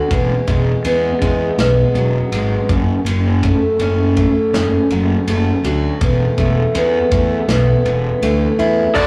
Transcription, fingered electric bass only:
0, 0, Header, 1, 2, 480
1, 0, Start_track
1, 0, Tempo, 738007
1, 69, Time_signature, 4, 2, 24, 8
1, 5898, End_track
2, 0, Start_track
2, 0, Title_t, "Fingered electric bass"
2, 0, Program_c, 0, 33
2, 67, Note_on_c, 0, 28, 89
2, 219, Note_off_c, 0, 28, 0
2, 310, Note_on_c, 0, 28, 83
2, 461, Note_off_c, 0, 28, 0
2, 550, Note_on_c, 0, 40, 72
2, 701, Note_off_c, 0, 40, 0
2, 791, Note_on_c, 0, 40, 78
2, 941, Note_off_c, 0, 40, 0
2, 1028, Note_on_c, 0, 35, 86
2, 1180, Note_off_c, 0, 35, 0
2, 1262, Note_on_c, 0, 28, 75
2, 1415, Note_off_c, 0, 28, 0
2, 1506, Note_on_c, 0, 32, 71
2, 1658, Note_off_c, 0, 32, 0
2, 1751, Note_on_c, 0, 30, 76
2, 1901, Note_off_c, 0, 30, 0
2, 1981, Note_on_c, 0, 30, 92
2, 2286, Note_off_c, 0, 30, 0
2, 2467, Note_on_c, 0, 30, 89
2, 2770, Note_off_c, 0, 30, 0
2, 2947, Note_on_c, 0, 30, 89
2, 3098, Note_off_c, 0, 30, 0
2, 3194, Note_on_c, 0, 30, 83
2, 3343, Note_off_c, 0, 30, 0
2, 3431, Note_on_c, 0, 30, 83
2, 3581, Note_off_c, 0, 30, 0
2, 3665, Note_on_c, 0, 38, 79
2, 3817, Note_off_c, 0, 38, 0
2, 3909, Note_on_c, 0, 28, 80
2, 4059, Note_off_c, 0, 28, 0
2, 4152, Note_on_c, 0, 28, 78
2, 4301, Note_off_c, 0, 28, 0
2, 4387, Note_on_c, 0, 40, 83
2, 4538, Note_off_c, 0, 40, 0
2, 4627, Note_on_c, 0, 40, 73
2, 4778, Note_off_c, 0, 40, 0
2, 4865, Note_on_c, 0, 35, 79
2, 5017, Note_off_c, 0, 35, 0
2, 5105, Note_on_c, 0, 28, 84
2, 5256, Note_off_c, 0, 28, 0
2, 5345, Note_on_c, 0, 38, 74
2, 5496, Note_off_c, 0, 38, 0
2, 5586, Note_on_c, 0, 40, 79
2, 5737, Note_off_c, 0, 40, 0
2, 5826, Note_on_c, 0, 38, 80
2, 5898, Note_off_c, 0, 38, 0
2, 5898, End_track
0, 0, End_of_file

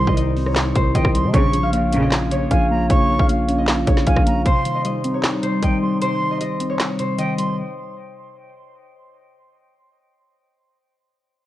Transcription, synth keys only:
0, 0, Header, 1, 2, 480
1, 0, Start_track
1, 0, Tempo, 389610
1, 1651, Time_signature, 4, 2, 24, 8
1, 14119, End_track
2, 0, Start_track
2, 0, Title_t, "Synth keys"
2, 0, Program_c, 0, 88
2, 0, Control_c, 0, 64, 127
2, 0, Note_on_c, 0, 48, 90
2, 0, Note_on_c, 0, 51, 86
2, 0, Note_on_c, 0, 55, 81
2, 0, Note_on_c, 0, 60, 90
2, 199, Note_off_c, 0, 55, 0
2, 214, Note_on_c, 0, 55, 85
2, 456, Note_off_c, 0, 60, 0
2, 456, Note_on_c, 0, 60, 94
2, 914, Note_off_c, 0, 48, 0
2, 929, Note_on_c, 0, 48, 78
2, 1149, Note_off_c, 0, 51, 0
2, 1164, Note_on_c, 0, 51, 90
2, 1397, Note_off_c, 0, 55, 0
2, 1412, Note_on_c, 0, 55, 93
2, 1647, Note_off_c, 0, 51, 0
2, 1650, Note_off_c, 0, 48, 0
2, 1651, Note_off_c, 0, 55, 0
2, 1653, Note_off_c, 0, 60, 0
2, 1654, Note_on_c, 0, 49, 89
2, 1665, Control_c, 0, 64, 0
2, 1889, Note_on_c, 0, 53, 77
2, 1901, Control_c, 0, 64, 127
2, 2123, Note_on_c, 0, 58, 84
2, 2369, Note_on_c, 0, 61, 95
2, 2834, Note_off_c, 0, 49, 0
2, 2849, Note_on_c, 0, 49, 74
2, 3074, Note_off_c, 0, 53, 0
2, 3089, Note_on_c, 0, 53, 96
2, 3315, Note_off_c, 0, 58, 0
2, 3330, Note_on_c, 0, 58, 83
2, 3552, Note_off_c, 0, 49, 0
2, 3567, Note_on_c, 0, 49, 94
2, 3570, Note_off_c, 0, 61, 0
2, 3800, Note_off_c, 0, 53, 0
2, 3815, Note_on_c, 0, 53, 75
2, 4034, Note_off_c, 0, 58, 0
2, 4049, Note_on_c, 0, 58, 79
2, 4287, Note_on_c, 0, 61, 98
2, 4749, Note_off_c, 0, 49, 0
2, 4763, Note_on_c, 0, 49, 80
2, 4986, Note_off_c, 0, 53, 0
2, 5001, Note_on_c, 0, 53, 97
2, 5237, Note_off_c, 0, 58, 0
2, 5252, Note_on_c, 0, 58, 79
2, 5486, Note_off_c, 0, 53, 0
2, 5487, Note_off_c, 0, 49, 0
2, 5489, Note_off_c, 0, 61, 0
2, 5491, Note_off_c, 0, 58, 0
2, 5495, Note_on_c, 0, 48, 88
2, 5509, Control_c, 0, 64, 0
2, 5711, Control_c, 0, 64, 127
2, 5734, Note_on_c, 0, 51, 75
2, 5966, Note_on_c, 0, 55, 78
2, 6214, Note_on_c, 0, 60, 100
2, 6666, Note_off_c, 0, 48, 0
2, 6681, Note_on_c, 0, 48, 71
2, 6918, Note_off_c, 0, 51, 0
2, 6933, Note_on_c, 0, 51, 95
2, 7157, Note_off_c, 0, 55, 0
2, 7172, Note_on_c, 0, 55, 71
2, 7404, Note_off_c, 0, 48, 0
2, 7412, Note_off_c, 0, 60, 0
2, 7419, Note_on_c, 0, 48, 79
2, 7637, Note_off_c, 0, 51, 0
2, 7652, Note_on_c, 0, 51, 77
2, 7878, Note_off_c, 0, 55, 0
2, 7893, Note_on_c, 0, 55, 80
2, 8132, Note_on_c, 0, 60, 97
2, 8599, Note_off_c, 0, 48, 0
2, 8614, Note_on_c, 0, 48, 73
2, 8837, Note_off_c, 0, 51, 0
2, 8852, Note_on_c, 0, 51, 89
2, 9074, Note_off_c, 0, 55, 0
2, 9089, Note_on_c, 0, 55, 78
2, 9330, Note_off_c, 0, 55, 0
2, 9331, Note_off_c, 0, 51, 0
2, 9331, Note_off_c, 0, 60, 0
2, 9333, Note_off_c, 0, 48, 0
2, 9346, Control_c, 0, 64, 0
2, 14119, End_track
0, 0, End_of_file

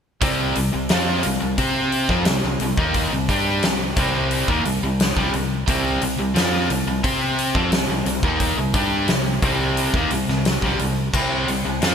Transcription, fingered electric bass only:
0, 0, Header, 1, 2, 480
1, 0, Start_track
1, 0, Key_signature, -3, "minor"
1, 0, Tempo, 681818
1, 163, Time_signature, 4, 2, 24, 8
1, 8411, End_track
2, 0, Start_track
2, 0, Title_t, "Fingered electric bass"
2, 0, Program_c, 0, 33
2, 153, Note_on_c, 0, 36, 102
2, 381, Note_off_c, 0, 36, 0
2, 399, Note_on_c, 0, 36, 74
2, 513, Note_off_c, 0, 36, 0
2, 524, Note_on_c, 0, 36, 78
2, 635, Note_off_c, 0, 36, 0
2, 641, Note_on_c, 0, 41, 88
2, 865, Note_off_c, 0, 41, 0
2, 885, Note_on_c, 0, 36, 85
2, 996, Note_off_c, 0, 36, 0
2, 1002, Note_on_c, 0, 36, 73
2, 1105, Note_off_c, 0, 36, 0
2, 1109, Note_on_c, 0, 48, 89
2, 1450, Note_off_c, 0, 48, 0
2, 1468, Note_on_c, 0, 41, 105
2, 1587, Note_off_c, 0, 41, 0
2, 1592, Note_on_c, 0, 36, 75
2, 1709, Note_off_c, 0, 36, 0
2, 1718, Note_on_c, 0, 36, 86
2, 1830, Note_off_c, 0, 36, 0
2, 1834, Note_on_c, 0, 36, 69
2, 1950, Note_off_c, 0, 36, 0
2, 1954, Note_on_c, 0, 39, 91
2, 2181, Note_off_c, 0, 39, 0
2, 2191, Note_on_c, 0, 36, 78
2, 2308, Note_off_c, 0, 36, 0
2, 2316, Note_on_c, 0, 43, 96
2, 2543, Note_off_c, 0, 43, 0
2, 2556, Note_on_c, 0, 36, 77
2, 2782, Note_off_c, 0, 36, 0
2, 2793, Note_on_c, 0, 36, 98
2, 3133, Note_off_c, 0, 36, 0
2, 3151, Note_on_c, 0, 39, 86
2, 3268, Note_off_c, 0, 39, 0
2, 3275, Note_on_c, 0, 36, 90
2, 3390, Note_off_c, 0, 36, 0
2, 3398, Note_on_c, 0, 36, 87
2, 3624, Note_off_c, 0, 36, 0
2, 3633, Note_on_c, 0, 36, 94
2, 3749, Note_off_c, 0, 36, 0
2, 3760, Note_on_c, 0, 36, 72
2, 3985, Note_off_c, 0, 36, 0
2, 3996, Note_on_c, 0, 36, 100
2, 4222, Note_off_c, 0, 36, 0
2, 4237, Note_on_c, 0, 36, 77
2, 4352, Note_off_c, 0, 36, 0
2, 4357, Note_on_c, 0, 36, 73
2, 4472, Note_off_c, 0, 36, 0
2, 4475, Note_on_c, 0, 41, 95
2, 4702, Note_off_c, 0, 41, 0
2, 4718, Note_on_c, 0, 36, 83
2, 4830, Note_off_c, 0, 36, 0
2, 4834, Note_on_c, 0, 36, 82
2, 4950, Note_off_c, 0, 36, 0
2, 4956, Note_on_c, 0, 48, 95
2, 5295, Note_off_c, 0, 48, 0
2, 5312, Note_on_c, 0, 41, 101
2, 5427, Note_off_c, 0, 41, 0
2, 5431, Note_on_c, 0, 36, 87
2, 5548, Note_off_c, 0, 36, 0
2, 5553, Note_on_c, 0, 36, 78
2, 5668, Note_off_c, 0, 36, 0
2, 5672, Note_on_c, 0, 36, 75
2, 5789, Note_off_c, 0, 36, 0
2, 5794, Note_on_c, 0, 39, 97
2, 6022, Note_off_c, 0, 39, 0
2, 6038, Note_on_c, 0, 36, 72
2, 6147, Note_off_c, 0, 36, 0
2, 6151, Note_on_c, 0, 43, 92
2, 6381, Note_off_c, 0, 43, 0
2, 6395, Note_on_c, 0, 36, 77
2, 6623, Note_off_c, 0, 36, 0
2, 6633, Note_on_c, 0, 36, 96
2, 6974, Note_off_c, 0, 36, 0
2, 6994, Note_on_c, 0, 39, 83
2, 7111, Note_off_c, 0, 39, 0
2, 7118, Note_on_c, 0, 36, 84
2, 7233, Note_off_c, 0, 36, 0
2, 7238, Note_on_c, 0, 36, 85
2, 7465, Note_off_c, 0, 36, 0
2, 7474, Note_on_c, 0, 36, 96
2, 7591, Note_off_c, 0, 36, 0
2, 7604, Note_on_c, 0, 36, 76
2, 7828, Note_off_c, 0, 36, 0
2, 7841, Note_on_c, 0, 36, 101
2, 8067, Note_off_c, 0, 36, 0
2, 8089, Note_on_c, 0, 36, 69
2, 8200, Note_off_c, 0, 36, 0
2, 8207, Note_on_c, 0, 36, 72
2, 8319, Note_off_c, 0, 36, 0
2, 8323, Note_on_c, 0, 41, 91
2, 8411, Note_off_c, 0, 41, 0
2, 8411, End_track
0, 0, End_of_file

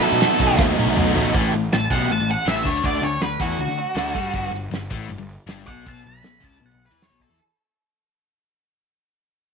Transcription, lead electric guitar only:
0, 0, Header, 1, 2, 480
1, 0, Start_track
1, 0, Tempo, 378072
1, 1690, Time_signature, 4, 2, 24, 8
1, 12108, End_track
2, 0, Start_track
2, 0, Title_t, "Lead electric guitar"
2, 0, Program_c, 0, 29
2, 40, Note_on_c, 0, 69, 81
2, 745, Note_off_c, 0, 69, 0
2, 2198, Note_on_c, 0, 81, 85
2, 2414, Note_off_c, 0, 81, 0
2, 2435, Note_on_c, 0, 78, 86
2, 2687, Note_off_c, 0, 78, 0
2, 2687, Note_on_c, 0, 81, 81
2, 2928, Note_off_c, 0, 81, 0
2, 2928, Note_on_c, 0, 78, 73
2, 3138, Note_off_c, 0, 78, 0
2, 3148, Note_on_c, 0, 76, 74
2, 3383, Note_off_c, 0, 76, 0
2, 3383, Note_on_c, 0, 73, 69
2, 3625, Note_off_c, 0, 73, 0
2, 3625, Note_on_c, 0, 74, 72
2, 3845, Note_off_c, 0, 74, 0
2, 3866, Note_on_c, 0, 73, 77
2, 4084, Note_on_c, 0, 71, 78
2, 4086, Note_off_c, 0, 73, 0
2, 4314, Note_off_c, 0, 71, 0
2, 4324, Note_on_c, 0, 66, 87
2, 5718, Note_off_c, 0, 66, 0
2, 7203, Note_on_c, 0, 78, 80
2, 7436, Note_off_c, 0, 78, 0
2, 7471, Note_on_c, 0, 81, 83
2, 7691, Note_off_c, 0, 81, 0
2, 7709, Note_on_c, 0, 83, 72
2, 8164, Note_off_c, 0, 83, 0
2, 8184, Note_on_c, 0, 81, 74
2, 8451, Note_off_c, 0, 81, 0
2, 8451, Note_on_c, 0, 78, 72
2, 8663, Note_off_c, 0, 78, 0
2, 8710, Note_on_c, 0, 71, 60
2, 8921, Note_off_c, 0, 71, 0
2, 8921, Note_on_c, 0, 73, 76
2, 9139, Note_off_c, 0, 73, 0
2, 9170, Note_on_c, 0, 69, 70
2, 9384, Note_off_c, 0, 69, 0
2, 12108, End_track
0, 0, End_of_file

